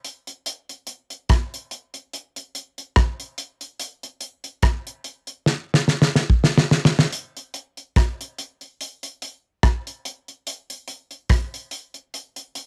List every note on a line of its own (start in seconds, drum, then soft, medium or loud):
0.05 closed hi-hat medium
0.27 closed hi-hat medium
0.46 closed hi-hat medium
0.69 closed hi-hat soft
0.87 closed hi-hat medium
1.10 closed hi-hat soft
1.29 kick loud
1.29 cross-stick loud
1.29 closed hi-hat medium
1.54 closed hi-hat medium
1.71 closed hi-hat medium
1.94 closed hi-hat medium
2.14 closed hi-hat medium
2.36 closed hi-hat medium
2.55 closed hi-hat medium
2.78 closed hi-hat soft
2.96 kick loud
2.96 cross-stick loud
2.96 closed hi-hat medium
3.20 closed hi-hat medium
3.38 closed hi-hat medium
3.61 closed hi-hat soft
3.79 closed hi-hat loud
4.03 closed hi-hat soft
4.21 closed hi-hat medium
4.44 closed hi-hat medium
4.62 kick loud
4.62 cross-stick loud
4.62 closed hi-hat medium
4.87 closed hi-hat medium
5.04 closed hi-hat medium
5.27 closed hi-hat medium
5.46 snare soft
5.74 snare medium
5.88 snare medium
6.02 snare medium
6.16 snare medium
6.30 kick loud
6.44 snare medium
6.58 snare medium
6.71 snare medium
6.85 snare medium
6.99 snare medium
7.12 closed hi-hat loud
7.37 closed hi-hat medium
7.54 closed hi-hat medium
7.77 closed hi-hat soft
7.96 kick loud
7.96 cross-stick loud
7.96 closed hi-hat medium
8.21 closed hi-hat medium
8.39 closed hi-hat medium
8.61 closed hi-hat soft
8.81 closed hi-hat medium
9.03 closed hi-hat medium
9.22 closed hi-hat medium
9.63 kick loud
9.63 cross-stick loud
9.63 closed hi-hat medium
9.87 closed hi-hat medium
10.05 closed hi-hat medium
10.28 closed hi-hat soft
10.47 closed hi-hat loud
10.70 closed hi-hat medium
10.88 closed hi-hat medium
11.11 closed hi-hat soft
11.29 kick loud
11.29 cross-stick loud
11.29 closed hi-hat loud
11.54 closed hi-hat medium
11.71 closed hi-hat medium
11.94 closed hi-hat soft
12.14 closed hi-hat medium
12.36 closed hi-hat medium
12.55 closed hi-hat medium